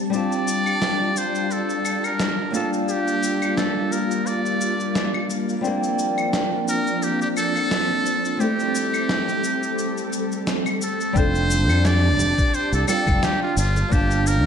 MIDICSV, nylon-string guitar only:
0, 0, Header, 1, 2, 480
1, 0, Start_track
1, 0, Tempo, 689655
1, 88, Time_signature, 4, 2, 24, 8
1, 10066, End_track
2, 0, Start_track
2, 0, Title_t, "Nylon-string guitar"
2, 0, Program_c, 0, 24
2, 0, Note_on_c, 0, 69, 73
2, 68, Note_on_c, 0, 55, 65
2, 73, Note_off_c, 0, 69, 0
2, 79, Note_on_c, 0, 60, 60
2, 90, Note_on_c, 0, 62, 60
2, 100, Note_on_c, 0, 65, 58
2, 111, Note_on_c, 0, 81, 72
2, 1732, Note_off_c, 0, 55, 0
2, 1738, Note_off_c, 0, 60, 0
2, 1741, Note_off_c, 0, 62, 0
2, 1744, Note_on_c, 0, 55, 64
2, 1748, Note_off_c, 0, 65, 0
2, 1753, Note_on_c, 0, 58, 64
2, 1754, Note_off_c, 0, 81, 0
2, 1765, Note_on_c, 0, 62, 64
2, 1775, Note_on_c, 0, 65, 58
2, 1786, Note_on_c, 0, 81, 79
2, 3890, Note_off_c, 0, 55, 0
2, 3895, Note_off_c, 0, 58, 0
2, 3901, Note_off_c, 0, 62, 0
2, 3904, Note_on_c, 0, 55, 68
2, 3906, Note_off_c, 0, 65, 0
2, 3911, Note_off_c, 0, 81, 0
2, 3915, Note_on_c, 0, 60, 60
2, 3926, Note_on_c, 0, 62, 58
2, 3936, Note_on_c, 0, 65, 58
2, 3946, Note_on_c, 0, 58, 75
2, 5811, Note_off_c, 0, 55, 0
2, 5816, Note_off_c, 0, 60, 0
2, 5822, Note_off_c, 0, 62, 0
2, 5826, Note_off_c, 0, 65, 0
2, 5826, Note_on_c, 0, 55, 69
2, 5831, Note_off_c, 0, 58, 0
2, 5836, Note_on_c, 0, 57, 64
2, 5846, Note_on_c, 0, 60, 66
2, 5856, Note_on_c, 0, 64, 65
2, 5867, Note_on_c, 0, 69, 75
2, 7731, Note_off_c, 0, 55, 0
2, 7736, Note_off_c, 0, 57, 0
2, 7741, Note_off_c, 0, 60, 0
2, 7746, Note_on_c, 0, 55, 81
2, 7747, Note_off_c, 0, 64, 0
2, 7752, Note_off_c, 0, 69, 0
2, 7756, Note_on_c, 0, 60, 77
2, 7766, Note_on_c, 0, 62, 75
2, 7777, Note_on_c, 0, 65, 75
2, 7788, Note_on_c, 0, 69, 88
2, 8931, Note_off_c, 0, 55, 0
2, 8936, Note_off_c, 0, 60, 0
2, 8941, Note_off_c, 0, 62, 0
2, 8947, Note_off_c, 0, 65, 0
2, 8952, Note_off_c, 0, 69, 0
2, 8957, Note_on_c, 0, 55, 75
2, 8962, Note_on_c, 0, 60, 60
2, 8968, Note_on_c, 0, 62, 64
2, 8973, Note_on_c, 0, 65, 65
2, 8977, Note_on_c, 0, 74, 77
2, 9430, Note_off_c, 0, 55, 0
2, 9432, Note_off_c, 0, 60, 0
2, 9435, Note_off_c, 0, 62, 0
2, 9438, Note_off_c, 0, 65, 0
2, 9440, Note_off_c, 0, 74, 0
2, 9664, Note_on_c, 0, 55, 77
2, 9675, Note_on_c, 0, 58, 78
2, 9685, Note_on_c, 0, 62, 78
2, 9696, Note_on_c, 0, 65, 74
2, 9707, Note_on_c, 0, 81, 93
2, 10066, Note_off_c, 0, 55, 0
2, 10066, Note_off_c, 0, 58, 0
2, 10066, Note_off_c, 0, 62, 0
2, 10066, Note_off_c, 0, 65, 0
2, 10066, Note_off_c, 0, 81, 0
2, 10066, End_track
0, 0, End_of_file